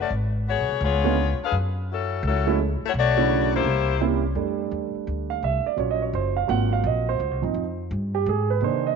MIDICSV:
0, 0, Header, 1, 5, 480
1, 0, Start_track
1, 0, Tempo, 354820
1, 138, Time_signature, 4, 2, 24, 8
1, 12117, End_track
2, 0, Start_track
2, 0, Title_t, "Saxophone section"
2, 0, Program_c, 0, 65
2, 0, Note_on_c, 0, 61, 72
2, 1, Note_on_c, 0, 66, 81
2, 4, Note_on_c, 0, 57, 84
2, 6, Note_on_c, 0, 74, 86
2, 140, Note_off_c, 0, 61, 0
2, 141, Note_off_c, 0, 66, 0
2, 143, Note_off_c, 0, 57, 0
2, 144, Note_off_c, 0, 74, 0
2, 654, Note_on_c, 0, 68, 70
2, 654, Note_on_c, 0, 73, 83
2, 655, Note_on_c, 0, 59, 66
2, 656, Note_on_c, 0, 66, 68
2, 1084, Note_off_c, 0, 59, 0
2, 1084, Note_off_c, 0, 66, 0
2, 1084, Note_off_c, 0, 68, 0
2, 1084, Note_off_c, 0, 73, 0
2, 1125, Note_on_c, 0, 68, 79
2, 1127, Note_on_c, 0, 65, 74
2, 1134, Note_on_c, 0, 59, 75
2, 1138, Note_on_c, 0, 73, 87
2, 1852, Note_off_c, 0, 68, 0
2, 1853, Note_off_c, 0, 65, 0
2, 1857, Note_off_c, 0, 59, 0
2, 1858, Note_off_c, 0, 73, 0
2, 1932, Note_on_c, 0, 68, 80
2, 1933, Note_on_c, 0, 62, 75
2, 1935, Note_on_c, 0, 77, 95
2, 1939, Note_on_c, 0, 71, 82
2, 2077, Note_off_c, 0, 68, 0
2, 2078, Note_off_c, 0, 62, 0
2, 2079, Note_off_c, 0, 77, 0
2, 2081, Note_off_c, 0, 71, 0
2, 2588, Note_on_c, 0, 61, 69
2, 2588, Note_on_c, 0, 64, 61
2, 2591, Note_on_c, 0, 54, 63
2, 2592, Note_on_c, 0, 69, 80
2, 3010, Note_off_c, 0, 64, 0
2, 3011, Note_off_c, 0, 61, 0
2, 3012, Note_off_c, 0, 54, 0
2, 3013, Note_off_c, 0, 69, 0
2, 3076, Note_on_c, 0, 69, 90
2, 3077, Note_on_c, 0, 64, 79
2, 3081, Note_on_c, 0, 54, 73
2, 3084, Note_on_c, 0, 61, 76
2, 3494, Note_off_c, 0, 69, 0
2, 3495, Note_off_c, 0, 64, 0
2, 3497, Note_off_c, 0, 54, 0
2, 3499, Note_off_c, 0, 61, 0
2, 3864, Note_on_c, 0, 66, 83
2, 3866, Note_on_c, 0, 57, 90
2, 3869, Note_on_c, 0, 73, 97
2, 3871, Note_on_c, 0, 64, 79
2, 3926, Note_off_c, 0, 66, 0
2, 3928, Note_off_c, 0, 57, 0
2, 3930, Note_off_c, 0, 73, 0
2, 3932, Note_off_c, 0, 64, 0
2, 4024, Note_on_c, 0, 66, 96
2, 4029, Note_on_c, 0, 73, 98
2, 4031, Note_on_c, 0, 74, 108
2, 4034, Note_on_c, 0, 57, 99
2, 4740, Note_off_c, 0, 66, 0
2, 4743, Note_off_c, 0, 73, 0
2, 4744, Note_off_c, 0, 74, 0
2, 4746, Note_off_c, 0, 57, 0
2, 4805, Note_on_c, 0, 72, 98
2, 4807, Note_on_c, 0, 58, 79
2, 4809, Note_on_c, 0, 64, 81
2, 4811, Note_on_c, 0, 67, 85
2, 5432, Note_off_c, 0, 72, 0
2, 5433, Note_off_c, 0, 58, 0
2, 5434, Note_off_c, 0, 64, 0
2, 5435, Note_off_c, 0, 67, 0
2, 12117, End_track
3, 0, Start_track
3, 0, Title_t, "Grand piano"
3, 0, Program_c, 1, 0
3, 1407, Note_on_c, 1, 50, 65
3, 1408, Note_on_c, 1, 56, 59
3, 1411, Note_on_c, 1, 59, 64
3, 1417, Note_on_c, 1, 61, 63
3, 1419, Note_on_c, 1, 65, 72
3, 1558, Note_off_c, 1, 50, 0
3, 1559, Note_off_c, 1, 56, 0
3, 1560, Note_off_c, 1, 59, 0
3, 1563, Note_off_c, 1, 61, 0
3, 1565, Note_off_c, 1, 65, 0
3, 3335, Note_on_c, 1, 54, 72
3, 3336, Note_on_c, 1, 56, 66
3, 3341, Note_on_c, 1, 61, 72
3, 3343, Note_on_c, 1, 57, 65
3, 3349, Note_on_c, 1, 64, 73
3, 3482, Note_off_c, 1, 54, 0
3, 3482, Note_off_c, 1, 56, 0
3, 3485, Note_off_c, 1, 61, 0
3, 3486, Note_off_c, 1, 57, 0
3, 3489, Note_off_c, 1, 64, 0
3, 4287, Note_on_c, 1, 50, 63
3, 4293, Note_on_c, 1, 57, 66
3, 4294, Note_on_c, 1, 49, 63
3, 4295, Note_on_c, 1, 54, 62
3, 4298, Note_on_c, 1, 64, 68
3, 4901, Note_off_c, 1, 50, 0
3, 4904, Note_off_c, 1, 49, 0
3, 4904, Note_off_c, 1, 54, 0
3, 4904, Note_off_c, 1, 57, 0
3, 4906, Note_off_c, 1, 64, 0
3, 5421, Note_on_c, 1, 55, 60
3, 5427, Note_on_c, 1, 58, 54
3, 5428, Note_on_c, 1, 60, 56
3, 5429, Note_on_c, 1, 61, 52
3, 5430, Note_on_c, 1, 64, 64
3, 5702, Note_off_c, 1, 55, 0
3, 5704, Note_off_c, 1, 58, 0
3, 5705, Note_off_c, 1, 60, 0
3, 5705, Note_off_c, 1, 61, 0
3, 5706, Note_off_c, 1, 64, 0
3, 5894, Note_on_c, 1, 55, 45
3, 5903, Note_on_c, 1, 57, 42
3, 5909, Note_on_c, 1, 62, 47
3, 7170, Note_on_c, 1, 77, 70
3, 7330, Note_off_c, 1, 77, 0
3, 7359, Note_on_c, 1, 76, 77
3, 7653, Note_off_c, 1, 76, 0
3, 7662, Note_on_c, 1, 74, 73
3, 7760, Note_off_c, 1, 55, 0
3, 7764, Note_off_c, 1, 57, 0
3, 7767, Note_off_c, 1, 62, 0
3, 7796, Note_on_c, 1, 54, 47
3, 7809, Note_on_c, 1, 61, 38
3, 7816, Note_off_c, 1, 74, 0
3, 7817, Note_on_c, 1, 65, 49
3, 7837, Note_on_c, 1, 73, 67
3, 7982, Note_off_c, 1, 73, 0
3, 7990, Note_on_c, 1, 75, 72
3, 8138, Note_off_c, 1, 75, 0
3, 8146, Note_on_c, 1, 73, 57
3, 8296, Note_off_c, 1, 73, 0
3, 8317, Note_on_c, 1, 72, 73
3, 8560, Note_off_c, 1, 54, 0
3, 8567, Note_off_c, 1, 61, 0
3, 8572, Note_off_c, 1, 65, 0
3, 8611, Note_on_c, 1, 77, 71
3, 8612, Note_off_c, 1, 72, 0
3, 8755, Note_on_c, 1, 54, 46
3, 8760, Note_on_c, 1, 58, 45
3, 8764, Note_on_c, 1, 60, 45
3, 8771, Note_off_c, 1, 77, 0
3, 8771, Note_on_c, 1, 65, 48
3, 8789, Note_on_c, 1, 78, 83
3, 9088, Note_off_c, 1, 78, 0
3, 9100, Note_on_c, 1, 77, 74
3, 9255, Note_off_c, 1, 77, 0
3, 9287, Note_on_c, 1, 75, 72
3, 9578, Note_off_c, 1, 75, 0
3, 9588, Note_on_c, 1, 72, 84
3, 9677, Note_off_c, 1, 54, 0
3, 9680, Note_off_c, 1, 58, 0
3, 9682, Note_off_c, 1, 60, 0
3, 9685, Note_off_c, 1, 65, 0
3, 10027, Note_off_c, 1, 72, 0
3, 10037, Note_on_c, 1, 53, 47
3, 10047, Note_on_c, 1, 60, 42
3, 10054, Note_on_c, 1, 63, 53
3, 10320, Note_off_c, 1, 53, 0
3, 10326, Note_off_c, 1, 60, 0
3, 10329, Note_off_c, 1, 63, 0
3, 11020, Note_on_c, 1, 67, 75
3, 11177, Note_off_c, 1, 67, 0
3, 11214, Note_on_c, 1, 68, 72
3, 11502, Note_off_c, 1, 68, 0
3, 11502, Note_on_c, 1, 71, 74
3, 11654, Note_on_c, 1, 51, 46
3, 11656, Note_on_c, 1, 58, 41
3, 11658, Note_off_c, 1, 71, 0
3, 11671, Note_on_c, 1, 62, 47
3, 11689, Note_on_c, 1, 72, 75
3, 11980, Note_off_c, 1, 72, 0
3, 11996, Note_on_c, 1, 75, 71
3, 12117, Note_off_c, 1, 51, 0
3, 12117, Note_off_c, 1, 58, 0
3, 12117, Note_off_c, 1, 62, 0
3, 12117, Note_off_c, 1, 75, 0
3, 12117, End_track
4, 0, Start_track
4, 0, Title_t, "Upright bass"
4, 0, Program_c, 2, 32
4, 139, Note_on_c, 2, 32, 88
4, 734, Note_off_c, 2, 32, 0
4, 786, Note_on_c, 2, 35, 64
4, 926, Note_off_c, 2, 35, 0
4, 934, Note_on_c, 2, 36, 65
4, 1085, Note_off_c, 2, 36, 0
4, 1090, Note_on_c, 2, 37, 102
4, 1835, Note_off_c, 2, 37, 0
4, 2051, Note_on_c, 2, 42, 95
4, 2965, Note_off_c, 2, 42, 0
4, 3013, Note_on_c, 2, 37, 104
4, 3755, Note_off_c, 2, 37, 0
4, 3975, Note_on_c, 2, 35, 98
4, 4887, Note_off_c, 2, 35, 0
4, 4927, Note_on_c, 2, 36, 95
4, 5842, Note_off_c, 2, 36, 0
4, 5885, Note_on_c, 2, 41, 79
4, 6355, Note_off_c, 2, 41, 0
4, 6376, Note_on_c, 2, 40, 80
4, 6668, Note_off_c, 2, 40, 0
4, 6859, Note_on_c, 2, 38, 84
4, 7323, Note_off_c, 2, 38, 0
4, 7339, Note_on_c, 2, 36, 86
4, 7630, Note_off_c, 2, 36, 0
4, 7811, Note_on_c, 2, 34, 83
4, 8279, Note_off_c, 2, 34, 0
4, 8297, Note_on_c, 2, 30, 92
4, 8762, Note_off_c, 2, 30, 0
4, 8777, Note_on_c, 2, 32, 95
4, 9239, Note_off_c, 2, 32, 0
4, 9247, Note_on_c, 2, 34, 91
4, 9717, Note_off_c, 2, 34, 0
4, 9735, Note_on_c, 2, 37, 86
4, 9889, Note_off_c, 2, 37, 0
4, 9889, Note_on_c, 2, 36, 59
4, 10043, Note_off_c, 2, 36, 0
4, 10052, Note_on_c, 2, 32, 71
4, 10196, Note_off_c, 2, 32, 0
4, 10204, Note_on_c, 2, 41, 83
4, 10676, Note_off_c, 2, 41, 0
4, 10697, Note_on_c, 2, 43, 95
4, 11163, Note_off_c, 2, 43, 0
4, 11176, Note_on_c, 2, 44, 93
4, 11634, Note_off_c, 2, 44, 0
4, 11642, Note_on_c, 2, 48, 81
4, 12117, Note_off_c, 2, 48, 0
4, 12117, End_track
5, 0, Start_track
5, 0, Title_t, "Muted upright bass strokes"
5, 1886, Note_on_c, 9, 29, 46
5, 2021, Note_off_c, 9, 29, 0
5, 3815, Note_on_c, 9, 29, 40
5, 3951, Note_off_c, 9, 29, 0
5, 6693, Note_on_c, 9, 29, 32
5, 6829, Note_off_c, 9, 29, 0
5, 7648, Note_on_c, 9, 29, 38
5, 7783, Note_off_c, 9, 29, 0
5, 12117, End_track
0, 0, End_of_file